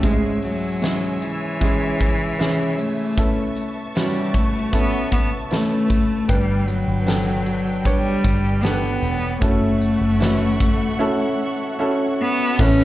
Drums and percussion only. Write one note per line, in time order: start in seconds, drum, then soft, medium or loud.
0.03 kick medium
0.03 closed hi-hat medium
0.43 closed hi-hat medium
0.82 snare medium
0.82 closed hi-hat medium
1.22 closed hi-hat medium
1.61 kick medium
1.61 closed hi-hat medium
2.01 kick medium
2.01 closed hi-hat medium
2.40 snare medium
2.40 closed hi-hat medium
2.79 closed hi-hat medium
3.17 kick medium
3.17 closed hi-hat medium
3.56 closed hi-hat medium
3.95 snare loud
3.95 closed hi-hat medium
4.34 kick medium
4.34 closed hi-hat medium
4.73 kick medium
4.73 closed hi-hat medium
5.12 kick medium
5.12 closed hi-hat medium
5.51 snare medium
5.51 closed hi-hat medium
5.90 kick medium
5.90 closed hi-hat medium
6.29 kick medium
6.29 closed hi-hat medium
6.68 closed hi-hat medium
7.07 snare loud
7.07 closed hi-hat medium
7.46 closed hi-hat medium
7.85 kick medium
7.85 closed hi-hat medium
8.24 kick medium
8.24 closed hi-hat medium
8.63 snare medium
8.63 closed hi-hat medium
9.03 closed hi-hat medium
9.42 kick loud
9.42 closed hi-hat medium
9.81 closed hi-hat medium
10.21 snare loud
10.21 closed hi-hat medium
10.60 kick medium
10.60 closed hi-hat medium
12.59 kick loud
12.59 crash loud